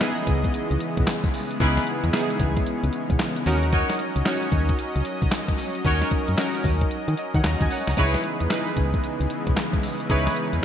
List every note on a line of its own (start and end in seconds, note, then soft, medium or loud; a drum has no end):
0.00 3.42 C#3 medium
0.00 3.42 E3 medium
0.00 3.42 G#3 medium
0.00 1.60 B3 medium
0.00 3.42 B3 medium
0.00 1.61 D#4 medium
0.00 0.02 E4 medium
0.00 1.01 E4 medium
0.00 0.02 G#4 medium
0.00 1.01 G#4 medium
0.00 1.58 D#5 medium
0.00 snare loud
0.00 clap medium
0.00 closed hi-hat medium
0.00 tambourine loud
0.18 closed hi-hat soft
0.27 0.46 C#2 loud
0.27 kick loud
0.27 closed hi-hat medium
0.27 tambourine medium
0.44 kick medium
0.44 closed hi-hat medium
0.54 closed hi-hat medium
0.54 tambourine medium
0.71 0.78 C#2 loud
0.71 closed hi-hat soft
0.80 closed hi-hat medium
0.80 tambourine medium
0.97 1.04 B1 loud
0.97 kick medium
0.97 closed hi-hat medium
1.07 snare loud
1.07 clap loud
1.07 closed hi-hat medium
1.07 tambourine loud
1.24 kick loud
1.24 closed hi-hat medium
1.34 open hi-hat medium
1.34 tambourine medium
1.51 closed hi-hat medium
1.60 1.79 C#2 loud
1.60 2.10 B3 medium
1.60 1.85 C#4 medium
1.60 7.93 C#4 medium
1.60 2.10 D#4 medium
1.60 1.85 E4 medium
1.60 2.10 E4 medium
1.60 2.11 G#4 loud
1.60 1.85 B4 loud
1.60 kick loud
1.60 closed hi-hat medium
1.77 snare medium
1.77 closed hi-hat medium
1.87 closed hi-hat medium
1.87 tambourine medium
2.04 2.11 E2 medium
2.04 closed hi-hat medium
2.13 3.13 B3 medium
2.13 3.13 D#4 medium
2.13 3.13 E4 medium
2.13 3.14 G#4 loud
2.13 snare loud
2.13 clap medium
2.13 closed hi-hat medium
2.13 tambourine loud
2.30 closed hi-hat soft
2.40 2.58 C#2 medium
2.40 kick medium
2.40 closed hi-hat medium
2.40 tambourine medium
2.57 kick medium
2.57 closed hi-hat medium
2.66 closed hi-hat medium
2.66 tambourine medium
2.83 2.90 C#2 loud
2.83 closed hi-hat medium
2.93 closed hi-hat medium
2.93 tambourine medium
3.10 3.17 B1 loud
3.10 kick medium
3.10 closed hi-hat medium
3.19 snare loud
3.19 clap medium
3.19 closed hi-hat medium
3.19 tambourine loud
3.36 closed hi-hat medium
3.46 3.83 D#2 loud
3.46 7.93 F#3 medium
3.46 4.21 C#4 medium
3.46 4.21 D#4 medium
3.46 4.21 F#4 medium
3.46 4.22 A#4 loud
3.46 10.06 D#5 medium
3.46 open hi-hat medium
3.46 tambourine medium
3.63 closed hi-hat medium
3.72 3.97 D#4 medium
3.72 3.98 F#4 medium
3.72 3.98 C#5 loud
3.72 kick loud
3.72 closed hi-hat medium
3.90 snare medium
3.90 closed hi-hat medium
3.99 closed hi-hat medium
3.99 tambourine medium
4.16 4.23 C#2 medium
4.16 closed hi-hat medium
4.25 5.26 C#4 medium
4.25 5.26 D#4 medium
4.25 5.26 F#4 medium
4.25 5.26 C#5 medium
4.25 snare loud
4.25 clap medium
4.25 closed hi-hat medium
4.25 tambourine loud
4.42 closed hi-hat soft
4.52 4.71 D#2 medium
4.52 kick loud
4.52 closed hi-hat medium
4.52 tambourine medium
4.69 kick medium
4.69 closed hi-hat medium
4.78 closed hi-hat medium
4.78 tambourine medium
4.96 5.02 C#2 medium
4.96 closed hi-hat soft
5.05 closed hi-hat medium
5.05 tambourine medium
5.22 5.29 C#2 medium
5.22 kick loud
5.22 closed hi-hat medium
5.32 snare loud
5.32 clap medium
5.32 closed hi-hat medium
5.32 tambourine medium
5.48 kick medium
5.48 closed hi-hat medium
5.58 open hi-hat medium
5.58 tambourine medium
5.75 closed hi-hat medium
5.85 6.04 D#2 loud
5.85 6.35 C#4 medium
5.85 6.10 D#4 medium
5.85 6.35 D#4 medium
5.85 6.10 F#4 medium
5.85 6.35 F#4 medium
5.85 6.35 A#4 medium
5.85 6.10 C#5 loud
5.85 kick loud
5.85 closed hi-hat medium
6.02 snare medium
6.02 closed hi-hat medium
6.11 kick loud
6.11 closed hi-hat medium
6.11 tambourine medium
6.28 6.35 F#2 medium
6.28 closed hi-hat medium
6.38 7.38 C#4 medium
6.38 7.38 D#4 medium
6.38 7.38 F#4 medium
6.38 7.18 A#4 loud
6.38 snare loud
6.38 clap medium
6.38 closed hi-hat medium
6.38 tambourine loud
6.55 closed hi-hat soft
6.64 6.83 D#2 loud
6.64 kick loud
6.64 open hi-hat medium
6.64 tambourine medium
6.81 kick medium
6.81 closed hi-hat soft
6.91 closed hi-hat medium
6.91 tambourine medium
7.08 7.15 D#3 loud
7.08 closed hi-hat soft
7.17 7.34 A#4 medium
7.17 7.34 D#5 medium
7.17 closed hi-hat medium
7.17 tambourine medium
7.34 7.41 D#3 loud
7.34 7.45 C#5 medium
7.34 7.44 F#5 medium
7.34 kick medium
7.34 closed hi-hat soft
7.44 7.56 D#2 medium
7.44 7.61 D#5 medium
7.44 7.61 A#5 medium
7.44 snare loud
7.44 clap medium
7.44 closed hi-hat medium
7.44 tambourine loud
7.61 7.68 D#2 medium
7.61 7.71 D#5 medium
7.61 7.71 G#5 medium
7.61 kick loud
7.61 closed hi-hat medium
7.71 7.88 C#5 medium
7.71 7.87 F#5 medium
7.71 open hi-hat medium
7.71 tambourine medium
7.87 7.95 C#2 medium
7.87 8.14 D#5 medium
7.87 8.14 A#5 medium
7.87 snare medium
7.87 closed hi-hat medium
7.97 8.16 C#2 loud
7.97 10.65 C#3 medium
7.97 10.65 E3 medium
7.97 10.65 G#3 medium
7.97 10.65 B3 medium
7.97 8.47 D#4 medium
7.97 8.22 E4 medium
7.97 8.48 E4 medium
7.97 8.48 G#4 medium
7.97 8.22 B4 medium
7.97 8.48 B4 medium
7.97 8.22 C#5 loud
7.97 kick loud
7.97 closed hi-hat medium
8.14 snare medium
8.14 closed hi-hat medium
8.23 closed hi-hat medium
8.23 tambourine medium
8.40 8.48 E2 medium
8.40 closed hi-hat medium
8.50 9.50 D#4 medium
8.50 9.50 E4 medium
8.50 9.50 G#4 medium
8.50 9.51 B4 medium
8.50 snare loud
8.50 clap medium
8.50 closed hi-hat medium
8.50 tambourine loud
8.67 closed hi-hat soft
8.77 8.95 C#2 medium
8.77 kick loud
8.77 closed hi-hat medium
8.77 tambourine medium
8.94 kick medium
8.94 closed hi-hat medium
9.03 closed hi-hat medium
9.03 tambourine medium
9.20 9.27 C#2 loud
9.20 closed hi-hat medium
9.30 closed hi-hat medium
9.30 tambourine medium
9.47 9.54 B1 medium
9.47 kick medium
9.47 closed hi-hat soft
9.57 snare loud
9.57 clap medium
9.57 closed hi-hat medium
9.57 tambourine loud
9.73 kick medium
9.73 closed hi-hat medium
9.83 open hi-hat medium
9.83 tambourine medium
10.00 closed hi-hat medium
10.09 10.28 C#2 loud
10.09 10.65 C#4 medium
10.09 10.60 D#4 medium
10.09 10.34 E4 medium
10.09 10.60 E4 medium
10.09 10.60 G#4 medium
10.09 10.35 B4 medium
10.09 10.60 B4 loud
10.09 10.35 C#5 loud
10.09 kick loud
10.09 closed hi-hat medium
10.27 snare medium
10.27 closed hi-hat medium
10.36 closed hi-hat medium
10.36 tambourine medium
10.53 10.60 E2 medium
10.53 closed hi-hat medium